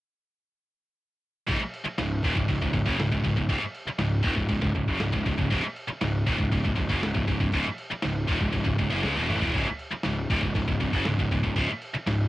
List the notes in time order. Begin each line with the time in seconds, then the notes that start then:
1.47 C#1 C#2 G#2, kick, crash
1.59 muted picked electric bass stroke, muted distorted electric guitar stroke
1.74 crash
1.85 muted distorted electric guitar stroke, muted picked electric bass stroke
1.98 C#1 C#2 G#2, snare, crash
2.23 D#1 D#2 A#2, kick, crash
2.36 C#1 C#2 G#2, kick
2.48 C#1 C#2 G#2, kick, crash
2.61 C#1 C#2 G#2, kick
2.73 C#1 C#2 G#2, kick, crash
2.85 F#1 F#2 C#3, kick
2.98 C#1 C#2 G#2, snare, crash
3.11 C#1 C#2 G#2, kick
3.23 C#1 C#2 G#2, kick, crash
3.36 C#1 C#2 G#2, kick
3.49 C#1 C#2 G#2, kick, crash
3.60 muted picked electric bass stroke, muted distorted electric guitar stroke
3.75 crash
3.86 muted picked electric bass stroke, muted distorted electric guitar stroke
3.99 C#1 C#2 G#2, snare, crash
4.23 D#1 D#2 A#2, kick, crash
4.36 C#1 C#2 G#2, kick
4.49 C#1 C#2 G#2, kick, crash
4.61 C#1 C#2 G#2, kick
4.75 C#1 C#2 G#2, kick, crash
4.87 F#1 F#2 C#3, kick
5.00 C#1 C#2 G#2, snare, crash
5.12 C#1 C#2 G#2, kick
5.25 C#1 C#2 G#2, kick, crash
5.38 C#1 C#2 G#2, kick
5.50 C#1 C#2 G#2, kick, crash
5.62 muted distorted electric guitar stroke, muted picked electric bass stroke
5.76 crash
5.88 muted distorted electric guitar stroke, muted picked electric bass stroke
6.01 C#1 C#2 G#2, snare, crash
6.26 D#1 D#2 A#2, kick, crash
6.38 C#1 C#2 G#2, kick
6.52 C#1 C#2 G#2, kick, crash
6.64 C#1 C#2 G#2, kick
6.75 C#1 C#2 G#2, kick, crash
6.89 F#1 F#2 C#3, kick
7.02 C#1 C#2 G#2, snare, crash
7.14 C#1 C#2 G#2, kick
7.27 C#1 C#2 G#2, kick, crash
7.40 C#1 C#2 G#2, kick
7.52 C#1 C#2 G#2, kick, crash
7.65 muted distorted electric guitar stroke, muted picked electric bass stroke
7.78 crash
7.91 muted distorted electric guitar stroke, muted picked electric bass stroke
8.02 C#1 C#2 G#2, snare, crash
8.27 D#1 D#2 A#2, kick, crash
8.40 C#1 C#2 G#2, kick
8.52 C#1 C#2 G#2, kick, crash
8.64 C#1 C#2 G#2, kick
8.78 C#1 C#2 G#2, kick, crash
8.90 F#1 F#2 C#3
9.02 C#2 C#3 G#3, snare
9.16 E1 E2 B2
9.28 A1 A2 E3, mid tom
9.41 E1 E2 B2, floor tom
9.53 C#1 C#2 G#2, kick, crash
9.66 muted distorted electric guitar stroke, muted picked electric bass stroke
9.79 crash
9.91 muted distorted electric guitar stroke, muted picked electric bass stroke
10.03 C#1 C#2 G#2, snare, crash
10.30 D#1 D#2 A#2, kick, crash
10.42 C#1 C#2 G#2, kick
10.55 C#1 C#2 G#2, kick, crash
10.68 C#1 C#2 G#2, kick
10.80 C#1 C#2 G#2, kick, crash
10.92 F#1 F#2 C#3, kick
11.05 C#1 C#2 G#2, snare, crash
11.18 C#1 C#2 G#2, kick
11.31 C#1 C#2 G#2, kick, crash
11.43 C#1 C#2 G#2, kick
11.56 C#1 C#2 G#2, kick, crash
11.70 muted distorted electric guitar stroke, muted picked electric bass stroke
11.82 crash
11.94 muted distorted electric guitar stroke, muted picked electric bass stroke
12.07 C#1 C#2 G#2, snare, crash